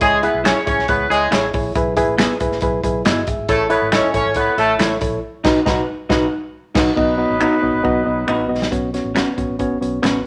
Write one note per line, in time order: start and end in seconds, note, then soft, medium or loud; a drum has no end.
0.01 0.27 C#2 loud
0.01 0.19 G#3 loud
0.01 0.19 E4 loud
0.01 0.19 G#4 loud
0.01 0.19 C#5 loud
0.01 kick loud
0.01 closed hi-hat medium
0.23 0.41 B3 medium
0.23 0.40 E4 loud
0.23 0.41 G#4 loud
0.23 0.41 B4 medium
0.23 0.41 E5 loud
0.23 closed hi-hat medium
0.34 0.51 B1 medium
0.44 0.63 C#4 medium
0.44 0.57 E4 medium
0.44 0.62 E4 medium
0.44 0.62 G#4 medium
0.44 0.57 G#4 loud
0.44 0.63 C#5 medium
0.44 0.58 C#5 medium
0.44 finger snap loud
0.44 snare loud
0.44 closed hi-hat medium
0.66 0.76 C#2 medium
0.66 0.84 C#4 medium
0.66 0.84 E4 medium
0.66 0.84 G#4 medium
0.66 0.84 C#5 loud
0.66 0.85 C#5 loud
0.66 kick medium
0.66 closed hi-hat medium
0.78 0.86 B1 medium
0.78 snare soft
0.88 1.06 C#2 loud
0.88 1.06 B3 medium
0.88 1.06 E4 medium
0.88 1.06 G#4 medium
0.88 1.06 B4 loud
0.88 1.07 C#5 medium
0.88 kick loud
0.88 closed hi-hat medium
1.10 1.27 C#2 loud
1.10 1.28 G#3 loud
1.10 1.28 E4 medium
1.10 1.28 G#4 loud
1.10 1.28 G#4 medium
1.10 1.28 C#5 medium
1.10 closed hi-hat medium
1.31 1.48 A1 medium
1.31 1.44 E4 medium
1.31 1.49 E4 loud
1.31 1.44 G#4 medium
1.31 1.50 G#4 medium
1.31 1.44 C#5 medium
1.31 1.50 C#5 loud
1.31 finger snap medium
1.31 snare loud
1.31 closed hi-hat medium
1.53 1.71 A#1 medium
1.53 1.71 E4 medium
1.53 1.71 G#4 medium
1.53 1.72 C#5 medium
1.53 kick loud
1.53 open hi-hat medium
1.75 2.01 B1 loud
1.75 1.93 E4 loud
1.75 1.93 G#4 medium
1.75 1.93 B4 loud
1.75 kick loud
1.75 closed hi-hat medium
1.97 2.14 E4 loud
1.97 2.14 G#4 loud
1.97 2.15 B4 loud
1.97 kick medium
1.97 closed hi-hat medium
2.07 2.25 A1 medium
2.18 2.31 B3 loud
2.18 2.31 E4 medium
2.18 2.36 E4 medium
2.18 2.36 G#4 medium
2.18 2.31 G#4 loud
2.18 2.37 B4 medium
2.18 finger snap loud
2.18 snare loud
2.18 closed hi-hat medium
2.40 2.49 B1 medium
2.40 2.58 E4 loud
2.40 2.58 G#4 medium
2.40 2.58 B4 loud
2.40 kick medium
2.40 closed hi-hat medium
2.51 2.60 A1 medium
2.51 snare soft
2.61 2.79 B1 loud
2.61 2.79 E4 medium
2.61 2.80 G#4 medium
2.61 2.80 B4 loud
2.61 kick medium
2.61 closed hi-hat medium
2.83 3.01 B1 loud
2.83 3.01 E4 medium
2.83 3.01 G#4 medium
2.83 3.02 B4 medium
2.83 kick medium
2.83 closed hi-hat medium
3.05 3.23 G1 medium
3.05 3.18 B3 medium
3.05 3.18 E4 medium
3.05 3.27 F#4 medium
3.05 3.19 G#4 medium
3.05 3.26 D#5 medium
3.05 finger snap medium
3.05 snare loud
3.05 closed hi-hat medium
3.27 3.45 G#1 medium
3.27 3.69 G#4 medium
3.27 3.69 E5 medium
3.27 kick loud
3.27 closed hi-hat medium
3.49 3.74 A1 loud
3.49 3.67 A3 loud
3.49 3.66 E4 loud
3.49 3.67 A4 loud
3.49 3.67 C#5 loud
3.49 kick loud
3.49 closed hi-hat medium
3.70 3.88 B3 medium
3.70 3.88 E4 loud
3.70 3.88 A4 loud
3.70 3.88 B4 loud
3.70 3.88 C#5 loud
3.70 closed hi-hat medium
3.82 3.99 G#1 medium
3.92 4.10 C#4 medium
3.92 4.10 E4 medium
3.92 4.05 E4 medium
3.92 4.10 A4 medium
3.92 4.05 A4 medium
3.92 4.10 C#5 medium
3.92 4.06 C#5 loud
3.92 4.10 D#5 loud
3.92 finger snap loud
3.92 snare loud
3.92 closed hi-hat medium
4.14 4.23 A1 medium
4.14 4.32 C#4 medium
4.14 4.31 E4 medium
4.14 4.32 A4 medium
4.14 4.32 C#5 loud
4.14 kick medium
4.14 closed hi-hat medium
4.26 4.34 G#1 medium
4.34 4.54 B3 medium
4.34 4.53 E4 medium
4.34 4.54 A4 medium
4.34 4.54 B4 loud
4.34 4.54 C#5 loud
4.34 kick medium
4.34 closed hi-hat medium
4.47 muted fingered electric bass stroke soft
4.58 4.75 A1 medium
4.58 4.76 A3 loud
4.58 4.75 E4 medium
4.58 4.75 A4 medium
4.58 4.76 A4 loud
4.58 4.76 C#5 medium
4.58 closed hi-hat medium
4.79 4.96 A1 loud
4.79 4.91 E4 medium
4.79 4.97 E4 loud
4.79 4.97 A4 medium
4.79 4.92 A4 loud
4.79 4.97 C#5 loud
4.79 4.92 C#5 loud
4.79 finger snap medium
4.79 snare loud
4.79 closed hi-hat loud
5.01 5.18 A#1 medium
5.01 5.18 E4 medium
5.01 5.19 A4 medium
5.01 5.19 C#5 loud
5.01 kick loud
5.01 closed hi-hat medium
5.44 5.60 B1 loud
5.44 5.59 D#4 loud
5.44 5.60 D#4 loud
5.44 5.60 F#4 loud
5.44 5.60 B4 loud
5.44 kick loud
5.44 snare loud
5.44 crash medium
5.66 5.81 B1 loud
5.66 5.81 D#4 medium
5.66 5.81 D#4 loud
5.66 5.81 F#4 medium
5.66 5.81 F#4 loud
5.66 5.82 B4 medium
5.66 5.82 B4 loud
5.66 kick loud
5.66 snare loud
6.09 6.25 B1 loud
6.09 6.24 D#4 loud
6.09 6.25 D#4 loud
6.09 6.25 F#4 loud
6.09 6.25 B4 loud
6.09 6.26 B4 loud
6.09 kick loud
6.09 snare loud
6.75 6.90 B1 medium
6.75 6.90 D#4 medium
6.75 6.90 D#4 loud
6.75 6.90 F#4 medium
6.75 6.91 F#4 loud
6.75 6.91 B4 loud
6.75 kick loud
6.75 snare loud
6.75 crash medium
6.96 7.23 B1 medium
6.96 8.47 F#3 medium
6.96 7.14 B3 loud
6.96 7.14 D#4 medium
6.96 8.47 D#4 medium
6.96 7.14 F#4 medium
6.96 8.47 B4 medium
6.96 7.15 D#5 loud
6.96 kick loud
7.17 7.36 B3 medium
7.17 7.36 D#4 medium
7.17 7.36 F#4 medium
7.17 7.36 D#5 medium
7.30 7.47 A1 medium
7.40 7.58 B3 medium
7.40 7.58 D#4 medium
7.40 7.53 D#4 medium
7.40 7.58 F#4 medium
7.40 7.53 F#4 medium
7.40 7.54 B4 medium
7.40 7.58 D#5 medium
7.40 finger snap medium
7.62 7.71 B1 loud
7.62 7.80 B3 medium
7.62 7.80 D#4 medium
7.62 7.80 F#4 medium
7.62 7.80 D#5 loud
7.73 7.82 A1 medium
7.83 8.02 B1 medium
7.83 8.01 B3 loud
7.83 8.02 D#4 medium
7.83 8.02 F#4 loud
7.83 8.02 D#5 loud
7.83 kick medium
8.05 8.23 B1 medium
8.05 8.23 B3 medium
8.05 8.23 D#4 medium
8.05 8.24 F#4 medium
8.05 8.24 D#5 medium
8.27 8.45 A1 medium
8.27 8.45 B3 medium
8.27 8.45 D#4 medium
8.27 8.40 D#4 medium
8.27 8.45 F#4 medium
8.27 8.41 F#4 medium
8.27 8.41 B4 medium
8.27 8.46 D#5 medium
8.27 finger snap medium
8.48 8.67 A#1 medium
8.48 8.67 B3 medium
8.48 8.67 D#4 medium
8.48 8.67 F#4 medium
8.48 8.67 D#5 medium
8.62 snare medium
8.71 8.98 B1 medium
8.71 8.89 B3 medium
8.71 8.89 C#4 medium
8.71 8.89 F#4 medium
8.71 8.89 C#5 medium
8.71 kick medium
8.71 closed hi-hat medium
8.93 9.11 B3 medium
8.93 9.11 C#4 medium
8.93 9.11 F#4 medium
8.93 9.12 C#5 medium
8.93 snare soft
8.93 closed hi-hat medium
9.04 9.22 A1 medium
9.15 9.33 B3 medium
9.15 9.27 C#4 medium
9.15 9.33 C#4 medium
9.15 9.28 F#4 medium
9.15 9.33 F#4 medium
9.15 9.28 B4 medium
9.15 9.33 C#5 medium
9.15 finger snap medium
9.15 snare loud
9.15 closed hi-hat medium
9.37 9.46 B1 medium
9.37 9.55 B3 medium
9.37 9.55 C#4 medium
9.37 9.55 F#4 medium
9.37 9.55 C#5 medium
9.37 kick medium
9.37 closed hi-hat medium
9.49 9.74 A1 medium
9.59 9.77 B3 medium
9.59 9.77 C#4 medium
9.59 9.77 F#4 medium
9.59 9.78 C#5 loud
9.59 kick medium
9.59 closed hi-hat medium
9.81 9.99 B1 medium
9.81 9.99 B3 medium
9.81 9.99 C#4 medium
9.81 9.99 F#4 medium
9.81 9.99 C#5 medium
9.81 closed hi-hat medium
10.03 10.20 A1 medium
10.03 10.21 B3 medium
10.03 10.21 C#4 medium
10.03 10.16 C#4 medium
10.03 10.21 F#4 medium
10.03 10.16 F#4 medium
10.03 10.16 B4 medium
10.03 10.21 C#5 medium
10.03 finger snap medium
10.03 snare loud
10.03 closed hi-hat medium